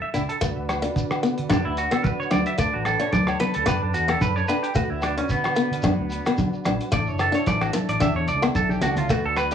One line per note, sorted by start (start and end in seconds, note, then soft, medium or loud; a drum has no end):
0.02 0.08 E5 medium
0.14 0.26 C#2 medium
0.14 0.28 D4 medium
0.14 0.22 E4 medium
0.14 closed hi-hat soft
0.14 low agogo medium
0.14 shekere medium
0.29 0.36 A4 medium
0.29 closed hi-hat soft
0.41 0.53 D2 loud
0.41 6.88 D4 medium
0.41 2.56 F#4 medium
0.41 2.57 B4 medium
0.41 muted steel-string acoustic guitar stroke medium
0.41 kick medium
0.41 closed hi-hat medium
0.41 muted conga soft
0.41 shekere medium
0.57 0.87 D2 medium
0.69 cross-stick medium
0.69 closed hi-hat soft
0.69 muted conga soft
0.69 low agogo medium
0.69 shekere medium
0.82 0.96 D4 medium
0.82 closed hi-hat soft
0.96 1.28 D3 medium
0.96 kick medium
0.96 closed hi-hat soft
0.96 shekere medium
1.11 cross-stick medium
1.11 low agogo medium
1.11 shekere soft
1.23 1.37 B3 medium
1.23 closed hi-hat soft
1.23 shekere medium
1.38 1.48 D3 medium
1.38 closed hi-hat soft
1.50 1.62 F#2 loud
1.50 1.63 D4 medium
1.50 1.65 D4 medium
1.50 kick medium
1.50 cross-stick medium
1.50 closed hi-hat soft
1.50 muted conga soft
1.50 high conga medium
1.50 low agogo medium
1.50 shekere loud
1.65 1.86 D2 medium
1.65 1.77 E4 medium
1.77 1.92 F#4 medium
1.77 closed hi-hat soft
1.77 shekere medium
1.91 2.05 B3 medium
1.91 2.05 A4 medium
1.91 cross-stick medium
1.91 closed hi-hat soft
1.91 low agogo medium
1.91 shekere soft
2.04 2.16 D3 loud
2.04 2.19 B4 medium
2.04 kick medium
2.04 closed hi-hat soft
2.04 high conga medium
2.04 shekere medium
2.20 2.32 C#5 medium
2.20 shekere soft
2.31 2.44 D2 medium
2.31 2.45 D4 medium
2.31 2.46 D5 medium
2.31 cross-stick medium
2.31 closed hi-hat soft
2.31 muted conga soft
2.31 high conga medium
2.31 low agogo medium
2.31 shekere medium
2.46 2.59 E5 medium
2.46 closed hi-hat soft
2.58 2.70 D2 loud
2.58 2.72 A3 medium
2.58 4.73 A4 medium
2.58 6.88 B4 medium
2.58 2.73 D5 medium
2.58 kick medium
2.58 closed hi-hat soft
2.58 shekere medium
2.74 2.95 A1 medium
2.74 2.86 F#4 medium
2.85 3.00 A4 medium
2.85 cross-stick medium
2.85 closed hi-hat medium
2.85 muted conga soft
2.85 low agogo medium
2.85 shekere medium
2.99 3.13 D4 medium
2.99 3.12 C#5 medium
2.99 closed hi-hat soft
3.12 3.33 D2 loud
3.12 3.27 D5 medium
3.12 kick medium
3.12 closed hi-hat soft
3.12 high conga loud
3.12 shekere medium
3.27 3.40 C#5 medium
3.27 cross-stick medium
3.27 low agogo medium
3.27 shekere soft
3.40 3.53 B3 medium
3.40 3.54 B4 medium
3.40 closed hi-hat soft
3.40 high conga medium
3.40 shekere medium
3.54 3.65 D2 medium
3.54 3.67 A4 medium
3.54 closed hi-hat soft
3.66 3.78 F#2 medium
3.66 3.81 B4 medium
3.66 muted steel-string acoustic guitar stroke medium
3.66 kick medium
3.66 cross-stick medium
3.66 closed hi-hat soft
3.66 muted conga soft
3.66 low conga medium
3.66 low agogo medium
3.66 shekere medium
3.82 3.94 F#2 medium
3.82 3.94 D4 medium
3.94 4.15 E2 medium
3.94 4.10 F#4 medium
3.94 closed hi-hat soft
3.94 shekere medium
4.08 4.22 B3 medium
4.08 4.21 A4 medium
4.08 cross-stick medium
4.08 closed hi-hat medium
4.08 low agogo medium
4.08 shekere soft
4.21 4.42 F#2 loud
4.21 4.36 B4 medium
4.21 kick medium
4.21 closed hi-hat medium
4.21 high conga medium
4.21 shekere medium
4.36 4.48 C#5 medium
4.36 shekere soft
4.48 4.63 D4 medium
4.48 4.63 B4 medium
4.48 closed hi-hat soft
4.48 muted conga soft
4.48 low agogo medium
4.48 shekere medium
4.63 4.75 G4 medium
4.63 closed hi-hat soft
4.75 4.87 D2 loud
4.75 4.89 A3 medium
4.75 4.90 F#4 medium
4.75 6.91 F#4 medium
4.75 kick medium
4.75 closed hi-hat soft
4.75 muted conga soft
4.75 shekere medium
4.90 5.20 D2 medium
4.90 5.02 E4 medium
5.02 5.17 D4 medium
5.02 cross-stick medium
5.02 closed hi-hat medium
5.02 muted conga soft
5.02 low agogo medium
5.02 shekere medium
5.18 5.30 C#4 medium
5.18 5.31 D4 medium
5.18 closed hi-hat soft
5.29 5.62 D3 medium
5.29 6.35 B3 medium
5.29 kick medium
5.29 closed hi-hat soft
5.29 shekere medium
5.44 cross-stick medium
5.44 low agogo medium
5.44 shekere soft
5.56 5.70 B3 medium
5.56 closed hi-hat soft
5.56 shekere medium
5.71 5.81 D3 medium
5.71 closed hi-hat soft
5.83 5.95 F#2 medium
5.83 5.97 D4 medium
5.83 kick medium
5.83 cross-stick medium
5.83 closed hi-hat soft
5.83 muted conga soft
5.83 high conga medium
5.83 low agogo medium
5.83 shekere medium
5.98 6.19 D2 medium
6.10 closed hi-hat soft
6.10 shekere medium
6.25 6.40 B3 medium
6.25 cross-stick medium
6.25 closed hi-hat soft
6.25 low agogo medium
6.25 shekere soft
6.38 6.49 D3 medium
6.38 kick medium
6.38 closed hi-hat soft
6.38 high conga medium
6.38 shekere medium
6.53 shekere soft
6.65 6.77 A#1 medium
6.65 6.79 D4 medium
6.65 cross-stick medium
6.65 closed hi-hat soft
6.65 muted conga soft
6.65 high conga medium
6.65 low agogo medium
6.65 shekere medium
6.80 closed hi-hat soft
6.92 7.04 A1 loud
6.92 7.06 A3 medium
6.92 9.55 D4 medium
6.92 9.07 E4 medium
6.92 9.07 A4 medium
6.92 7.08 D5 medium
6.92 kick medium
6.92 closed hi-hat soft
6.92 muted conga soft
6.92 shekere medium
7.07 7.28 F#1 medium
7.07 7.20 C#5 medium
7.07 shekere soft
7.19 7.34 A4 medium
7.19 cross-stick medium
7.19 closed hi-hat soft
7.19 muted conga soft
7.19 low agogo medium
7.19 shekere medium
7.32 7.46 D4 medium
7.32 7.47 C#5 medium
7.32 closed hi-hat soft
7.32 shekere soft
7.46 7.67 A1 medium
7.46 7.61 D5 loud
7.46 kick medium
7.46 closed hi-hat soft
7.46 high conga medium
7.46 shekere medium
7.61 7.74 F#4 medium
7.61 cross-stick medium
7.61 low agogo medium
7.61 shekere soft
7.73 muted steel-string acoustic guitar stroke medium
7.73 muted clean electric guitar stroke medium
7.73 closed hi-hat soft
7.73 high conga medium
7.73 shekere medium
7.89 7.98 A1 medium
7.89 8.01 D5 medium
7.89 closed hi-hat medium
8.00 8.12 E2 medium
8.00 8.14 D4 medium
8.00 8.16 E5 medium
8.00 kick medium
8.00 cross-stick medium
8.00 closed hi-hat soft
8.00 muted conga soft
8.00 low conga medium
8.00 low agogo medium
8.00 shekere medium
8.14 8.28 E2 medium
8.14 8.28 C#5 medium
8.27 8.48 C#2 medium
8.27 8.42 D5 loud
8.27 closed hi-hat soft
8.27 shekere medium
8.42 8.56 B3 medium
8.42 muted clean electric guitar stroke medium
8.42 cross-stick medium
8.42 closed hi-hat soft
8.42 low agogo medium
8.42 shekere soft
8.55 8.80 B1 medium
8.55 8.70 A4 medium
8.55 kick medium
8.55 closed hi-hat medium
8.55 high conga medium
8.55 shekere medium
8.69 8.82 G4 medium
8.69 high conga medium
8.69 shekere soft
8.81 9.06 C#2 medium
8.81 8.95 C#4 medium
8.81 8.97 F#4 medium
8.81 closed hi-hat medium
8.81 low conga medium
8.81 low agogo medium
8.81 shekere medium
8.96 9.10 F4 medium
8.96 closed hi-hat soft
8.96 low conga medium
8.96 shekere soft
9.09 9.21 D2 loud
9.09 9.24 A3 medium
9.09 9.55 F#4 medium
9.09 9.24 F#4 medium
9.09 9.55 B4 medium
9.09 kick medium
9.09 closed hi-hat medium
9.09 muted conga soft
9.09 shekere medium
9.24 9.54 D2 medium
9.24 9.37 A4 medium
9.35 9.51 B4 loud
9.35 cross-stick medium
9.35 closed hi-hat soft
9.35 muted conga soft
9.35 low agogo medium
9.35 shekere medium
9.51 9.55 D4 medium
9.51 closed hi-hat medium